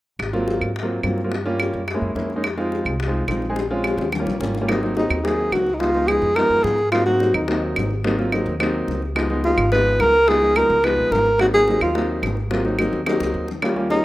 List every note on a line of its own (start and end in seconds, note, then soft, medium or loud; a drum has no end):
0.19 0.58 G#1 medium
0.19 high bongo medium
0.19 claves medium
0.33 0.68 F#3 medium
0.33 0.68 A#3 medium
0.33 0.68 C4 medium
0.33 0.68 F4 medium
0.33 high bongo soft
0.48 high bongo medium
0.61 1.01 G#2 medium
0.61 high bongo soft
0.61 claves medium
0.76 high bongo medium
0.83 0.97 F#3 medium
0.83 0.97 A#3 medium
0.83 0.97 C4 medium
0.83 0.97 F4 medium
1.03 1.68 G2 medium
1.03 1.18 F#3 medium
1.03 1.18 A#3 medium
1.03 1.18 C4 medium
1.03 1.18 F4 medium
1.03 high bongo soft
1.03 low bongo medium
1.03 claves medium
1.18 high bongo soft
1.24 1.31 F#3 medium
1.24 1.32 A#3 medium
1.24 1.31 C4 medium
1.24 1.32 F4 medium
1.32 high bongo medium
1.46 1.80 G3 medium
1.46 1.80 A#3 medium
1.46 1.80 C#4 medium
1.46 1.80 F4 medium
1.46 high bongo soft
1.59 high bongo medium
1.59 claves medium
1.73 2.00 F#2 medium
1.73 high bongo soft
1.88 high bongo medium
1.88 claves medium
1.94 2.09 G#3 medium
1.94 2.09 A#3 medium
1.94 2.09 C#4 medium
1.94 2.09 E4 medium
2.01 2.15 F#2 medium
2.15 2.80 F2 medium
2.15 2.30 G#3 medium
2.15 2.31 A#3 medium
2.15 2.30 C#4 medium
2.15 2.30 E4 medium
2.15 high bongo soft
2.15 low bongo medium
2.30 high bongo soft
2.36 2.44 G#3 medium
2.36 2.43 A#3 medium
2.36 2.44 C#4 medium
2.36 2.44 D#4 medium
2.44 high bongo medium
2.44 claves medium
2.57 2.92 G#3 medium
2.57 2.92 C4 medium
2.57 2.92 D#4 medium
2.57 2.92 F4 medium
2.57 high bongo soft
2.72 high bongo soft
2.85 3.25 C2 medium
2.85 high bongo soft
2.85 claves medium
3.00 high bongo medium
3.07 3.22 G#3 medium
3.07 3.22 C4 medium
3.07 3.22 D#4 medium
3.07 3.22 F4 medium
3.27 3.93 A#1 medium
3.27 3.43 G#3 medium
3.27 3.43 C4 medium
3.27 3.43 D#4 medium
3.27 3.43 F4 medium
3.27 high bongo soft
3.27 low bongo medium
3.27 claves medium
3.42 high bongo soft
3.50 3.56 G#3 medium
3.50 3.56 C4 medium
3.50 3.56 D#4 medium
3.50 3.56 G#4 medium
3.56 high bongo medium
3.71 4.05 G#3 medium
3.71 4.05 C4 medium
3.71 4.05 C#4 medium
3.71 4.05 F4 medium
3.84 high bongo medium
3.84 claves medium
3.97 4.24 D#2 medium
3.97 high bongo medium
4.12 low bongo medium
4.12 claves medium
4.20 4.34 G3 medium
4.20 4.34 A#3 medium
4.20 4.34 C#4 medium
4.20 4.34 F4 medium
4.26 4.39 A#1 medium
4.26 low bongo medium
4.40 5.05 G#1 medium
4.40 4.55 G3 medium
4.40 4.55 A#3 medium
4.40 4.55 C#4 medium
4.40 4.55 F4 medium
4.40 low bongo medium
4.55 low bongo medium
4.61 4.68 G3 medium
4.61 4.67 A#3 medium
4.61 4.68 C#4 medium
4.61 4.68 F4 medium
4.68 4.78 F#3 medium
4.68 4.78 A#3 medium
4.68 4.78 C4 medium
4.68 4.78 D#4 medium
4.68 high bongo medium
4.68 claves medium
4.83 4.92 F#3 medium
4.83 4.93 A#3 medium
4.83 4.92 C4 medium
4.83 4.92 D#4 medium
4.83 high bongo soft
4.97 5.16 F#3 medium
4.97 5.16 A#3 medium
4.97 5.16 C4 medium
4.97 5.16 D#4 medium
4.97 5.26 D#4 medium
4.97 high bongo medium
5.10 5.49 D#2 medium
5.10 high bongo soft
5.10 claves medium
5.24 5.64 F#3 medium
5.24 5.64 A#3 medium
5.24 5.64 C4 medium
5.24 5.64 D#4 medium
5.24 5.54 G#4 medium
5.24 high bongo medium
5.52 6.17 C#2 medium
5.52 5.76 F#4 medium
5.52 high bongo soft
5.52 low bongo medium
5.52 claves medium
5.66 high bongo soft
5.74 5.81 D#4 medium
5.80 5.90 F3 medium
5.80 5.90 G#3 medium
5.80 5.90 B3 medium
5.80 5.90 D#4 medium
5.80 6.09 F4 loud
5.80 high bongo medium
5.94 6.04 F3 medium
5.94 6.04 G#3 medium
5.94 6.04 B3 medium
5.94 6.04 D#4 medium
5.94 high bongo soft
6.08 6.28 F3 medium
6.08 6.28 G#3 medium
6.08 6.28 B3 medium
6.08 6.28 D#4 medium
6.08 6.37 G#4 medium
6.08 high bongo soft
6.08 claves medium
6.22 6.48 F2 medium
6.22 high bongo soft
6.35 6.76 F3 medium
6.35 6.75 G#3 medium
6.35 6.76 B3 medium
6.35 6.75 D#4 medium
6.35 6.65 A#4 loud
6.35 high bongo medium
6.35 claves medium
6.50 6.63 F#2 medium
6.64 7.29 G#2 medium
6.64 6.91 G#4 medium
6.64 high bongo soft
6.64 low bongo medium
6.78 high bongo soft
6.92 7.02 F#3 medium
6.92 7.02 A#3 medium
6.92 7.02 C4 medium
6.92 7.02 D#4 medium
6.92 7.05 F4 loud
6.92 high bongo medium
6.92 claves medium
7.06 7.16 F#3 medium
7.06 7.16 A#3 medium
7.06 7.16 C4 medium
7.06 7.16 D#4 medium
7.06 7.36 F#4 medium
7.06 high bongo soft
7.20 7.40 F#3 medium
7.20 7.40 A#3 medium
7.20 7.40 C4 medium
7.20 7.40 D#4 medium
7.20 high bongo medium
7.34 7.73 D#2 medium
7.34 7.62 D#4 medium
7.34 high bongo soft
7.34 claves medium
7.48 7.88 F#3 medium
7.48 7.88 A#3 medium
7.48 7.88 C4 medium
7.48 7.88 D#4 medium
7.48 high bongo medium
7.76 8.41 G#1 medium
7.76 high bongo soft
7.76 low bongo medium
7.76 claves medium
7.91 high bongo soft
8.04 8.14 F#3 medium
8.04 8.14 A#3 medium
8.04 8.14 C4 medium
8.04 8.14 D#4 medium
8.04 high bongo medium
8.18 8.28 F#3 medium
8.18 8.28 A#3 medium
8.18 8.28 C4 medium
8.18 8.28 F4 medium
8.18 high bongo soft
8.32 8.52 F#3 medium
8.32 8.52 A#3 medium
8.32 8.52 C4 medium
8.32 8.52 D#4 medium
8.32 high bongo medium
8.32 claves medium
8.46 8.85 D#2 medium
8.46 high bongo soft
8.60 8.99 F#3 medium
8.60 8.99 A#3 medium
8.60 8.99 C4 medium
8.60 8.99 D#4 medium
8.60 high bongo medium
8.60 claves medium
8.88 9.52 C#2 medium
8.88 high bongo soft
8.88 low bongo medium
9.02 high bongo soft
9.15 9.26 F3 medium
9.15 9.26 G#3 medium
9.15 9.26 B3 medium
9.15 9.26 D#4 medium
9.15 high bongo medium
9.15 claves medium
9.30 9.40 F3 medium
9.30 9.40 G#3 medium
9.30 9.40 B3 medium
9.30 9.40 D#4 medium
9.30 high bongo soft
9.44 9.64 F3 medium
9.44 9.64 G#3 medium
9.44 9.64 B3 medium
9.44 9.64 D#4 medium
9.44 9.70 F4 medium
9.44 high bongo medium
9.57 9.97 G#1 medium
9.57 high bongo soft
9.57 claves medium
9.72 10.11 F3 medium
9.72 10.11 G#3 medium
9.72 10.11 B3 medium
9.72 10.11 D#4 medium
9.72 10.02 B4 loud
9.72 high bongo medium
9.99 10.64 C#2 medium
9.99 10.30 A#4 loud
9.99 high bongo soft
9.99 low bongo medium
9.99 claves medium
10.14 high bongo soft
10.28 10.38 F3 medium
10.28 10.38 G#3 medium
10.28 10.38 B3 medium
10.28 10.38 D#4 medium
10.28 10.58 G#4 loud
10.28 high bongo medium
10.42 10.51 F3 medium
10.42 10.51 G#3 medium
10.42 10.51 B3 medium
10.42 10.51 D#4 medium
10.42 high bongo soft
10.56 10.75 F3 medium
10.56 10.75 G#3 medium
10.56 10.75 B3 medium
10.56 10.75 D#4 medium
10.56 10.86 A#4 medium
10.56 high bongo medium
10.56 claves medium
10.70 10.95 C#2 medium
10.70 high bongo soft
10.84 11.23 F3 medium
10.84 11.23 G#3 medium
10.84 11.23 B3 medium
10.84 11.23 D#4 medium
10.84 11.14 B4 medium
10.84 high bongo medium
10.84 claves medium
10.97 11.10 A#1 medium
11.11 11.76 G#1 medium
11.11 11.40 A#4 medium
11.11 high bongo soft
11.11 low bongo medium
11.26 high bongo soft
11.39 11.49 F#3 medium
11.39 11.49 A#3 medium
11.39 11.49 C4 medium
11.39 11.49 D#4 medium
11.39 11.47 F#4 medium
11.39 high bongo medium
11.39 claves medium
11.53 11.63 F#3 medium
11.53 11.63 A#3 medium
11.53 11.63 C4 medium
11.53 11.63 D#4 medium
11.53 11.80 G#4 medium
11.53 high bongo soft
11.67 11.87 F#3 medium
11.67 11.87 A#3 medium
11.67 11.87 C4 medium
11.67 11.87 D#4 medium
11.67 high bongo medium
11.81 12.20 D#2 medium
11.81 12.08 F4 medium
11.81 high bongo soft
11.81 claves medium
11.95 12.34 F#3 medium
11.95 12.34 A#3 medium
11.95 12.34 C4 medium
11.95 12.34 D#4 medium
11.95 high bongo medium
12.22 12.87 G#1 medium
12.22 high bongo soft
12.22 low bongo medium
12.22 claves medium
12.37 high bongo soft
12.51 12.61 F#3 medium
12.51 12.61 A#3 medium
12.51 12.61 C4 medium
12.51 12.61 F4 medium
12.51 high bongo medium
12.65 12.74 F#3 medium
12.65 12.75 A#3 medium
12.65 12.75 C4 medium
12.65 12.75 D#4 medium
12.65 high bongo soft
12.79 12.98 F#3 medium
12.79 12.98 A#3 medium
12.79 12.99 C4 medium
12.79 12.98 D#4 medium
12.79 high bongo medium
12.79 claves medium
12.93 13.19 D#2 medium
12.93 high bongo soft
13.06 13.46 F#3 medium
13.06 13.46 A#3 medium
13.06 13.46 C4 medium
13.06 13.46 D#4 loud
13.06 high bongo loud
13.06 claves medium
13.20 13.33 C#2 medium
13.20 high bongo medium
13.34 13.99 D#2 medium
13.48 low bongo medium
13.62 13.72 G3 medium
13.62 13.72 A#3 medium
13.62 13.72 C#4 medium
13.62 13.72 F4 medium
13.62 high bongo medium
13.62 claves medium
13.76 13.86 G3 medium
13.76 13.86 A#3 medium
13.76 13.86 C#4 medium
13.76 13.86 F4 medium
13.76 high bongo soft
13.90 14.05 G3 medium
13.90 14.05 A#3 medium
13.90 14.05 C#4 medium
13.90 14.05 D#4 medium
13.90 14.05 F4 medium
13.90 high bongo medium